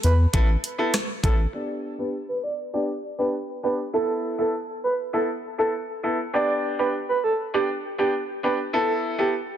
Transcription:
0.03 sub bass E2, soft synth lead B4, closed hi-hat
0.33 sub bass A1, grand piano B3 E4 A4, kick, closed hi-hat
0.64 closed hi-hat
0.78 grand piano B3 E4 A4
0.94 cross-stick, snare, closed hi-hat
1.23 sub bass A1, grand piano B3 E4 A4, soft synth lead A4, kick, closed hi-hat
1.53 grand piano B3 D4 G4, soft synth lead D5
1.98 grand piano B3 D4 G4, soft synth lead B4
2.29 soft synth lead B4
2.44 soft synth lead D5
2.73 grand piano B3 D4 G4, soft synth lead D5
3.18 grand piano B3 D4 G4, soft synth lead B4
3.63 grand piano B3 D4 G4, soft synth lead B4
3.93 grand piano B3 E4 A4, soft synth lead A4
4.38 grand piano B3 E4 A4, soft synth lead A4
4.84 soft synth lead B4
5.13 grand piano B3 E4 A4, soft synth lead A4
5.58 grand piano B3 E4 A4, soft synth lead A4
6.03 grand piano B3 E4 A4
6.33 grand piano B3 D4 G4, soft synth lead D5
6.79 grand piano B3 D4 G4, soft synth lead B4
7.09 soft synth lead B4
7.24 soft synth lead A4
7.54 grand piano B3 D4 G4, soft synth lead G4
7.98 grand piano B3 D4 G4, soft synth lead G4
8.43 grand piano B3 D4 G4, soft synth lead B4
8.73 grand piano B3 E4 A4, soft synth lead A4
9.18 grand piano B3 E4 A4, soft synth lead G4

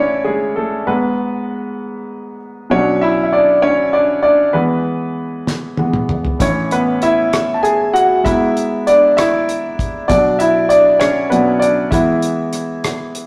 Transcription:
Already playing: grand piano A2 E3 A3 C#4 D4 E4 C#5 D5 E5
0.24 grand piano G#3 G#4
0.56 grand piano A3 A4
0.87 grand piano G#2 G#3 B3 B4
2.70 grand piano B2 F#3 C#4 D4 C#5
3.01 grand piano E4 E5
3.23 grand piano E5
3.33 grand piano D4 D5
3.62 grand piano C#4 C#5
3.93 grand piano D4 D5
4.23 grand piano D4 D5
4.53 grand piano E3 G#3 B3 B4
5.47 snare
5.77 grand piano E3 G#3 B3, high tom
5.94 mid tom
6.09 mid tom
6.25 floor tom
6.39 grand piano A2 E3 C#4 C#5, kick, closed hi-hat
6.71 grand piano B3 B4, closed hi-hat
7.02 grand piano E4 E5, closed hi-hat
7.33 cross-stick, closed hi-hat
7.54 grand piano A5
7.63 grand piano G#4 G#5, closed hi-hat
7.93 grand piano F#4 F#5, closed hi-hat
8.24 grand piano G#2 G#3 B3 E4 E5, kick, closed hi-hat
8.57 closed hi-hat
8.87 grand piano D4 D5, closed hi-hat
9.17 grand piano E4 E5, cross-stick, closed hi-hat
9.49 closed hi-hat
9.79 kick, closed hi-hat
10.08 grand piano B2 F#3 D4 D5, kick, closed hi-hat
10.39 grand piano E4 E5, closed hi-hat
10.69 grand piano D4 D5, closed hi-hat
11.00 grand piano C#4 C#5, cross-stick, closed hi-hat
11.30 grand piano B2 F#3 B3 D4 B4, closed hi-hat
11.60 grand piano D4 D5, closed hi-hat
11.91 grand piano E3 G#3 B3 E4 E5, kick, closed hi-hat
12.22 closed hi-hat
12.53 cross-stick, closed hi-hat
12.84 cross-stick, closed hi-hat
13.15 closed hi-hat

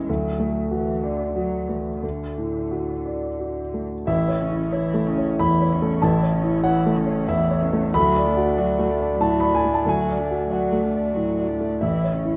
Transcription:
Already playing: grand piano A1 E2 C#4 E4 C#5, cello G#3
0.09 grand piano D2, cello F#3
0.40 grand piano A3
0.71 cello E3, grand piano F#4
1.03 cello D3, grand piano D5
1.35 cello F#3, grand piano F#4
1.68 cello E3, grand piano A3
2.02 grand piano D2, cello D3
2.38 grand piano A2
2.71 grand piano F#4
3.06 grand piano D5
3.39 grand piano F#4
3.74 grand piano A3
4.06 grand piano A1 E5, cello E3, viola E4
4.28 grand piano C#5
4.41 cello C#3, viola C#4
4.51 grand piano E4
4.72 cello E3, viola E4, grand piano C#5
4.94 grand piano A3
5.06 cello C#3, viola C#4
5.18 grand piano C#5
5.39 grand piano E2 B5, cello E3, viola E4
5.62 grand piano C#5
5.71 cello C#3, viola C#4
5.82 grand piano A3
6.02 grand piano A1 A5, cello E3, viola E4
6.23 grand piano C#5
6.32 cello C#3, viola C#4
6.43 grand piano E4
6.64 cello E3, viola E4, grand piano C#5 F#5
6.86 grand piano A3
6.95 cello C#3, viola C#4
7.06 grand piano C#5
7.28 grand piano E2 E5, cello E3, viola E4
7.51 grand piano C#5
7.61 cello C#3, viola C#4
7.73 grand piano A3
7.94 grand piano D2 B5, cello F#3, viola F#4
8.16 grand piano D5
8.26 cello A3, viola D4
8.36 grand piano F#4
8.57 cello F#3, viola F#4, grand piano D5
8.79 grand piano A3
8.88 cello A3, viola D4
9.00 grand piano D5
9.17 grand piano A2 A5, cello F#3, viola F#4
9.40 grand piano D5 B5
9.51 cello A3, viola D4, grand piano G#5
9.65 grand piano A3
9.74 grand piano A5
9.84 grand piano D2, cello F#3, viola F#4
9.89 grand piano G#5
10.09 grand piano D5
10.18 cello A3, viola D4
10.30 grand piano F#4
10.48 cello F#3, viola F#4, grand piano D5
10.53 grand piano F#5
10.73 grand piano A3
10.81 cello A3, viola D4
10.95 grand piano D5
11.12 grand piano A2, cello F#3, viola F#4
11.39 grand piano D5
11.47 cello A3, viola D4
11.61 grand piano A3
11.80 grand piano A1 E5, cello E3, viola E4
12.04 grand piano C#5
12.12 cello C#3, viola C#4
12.25 grand piano E4

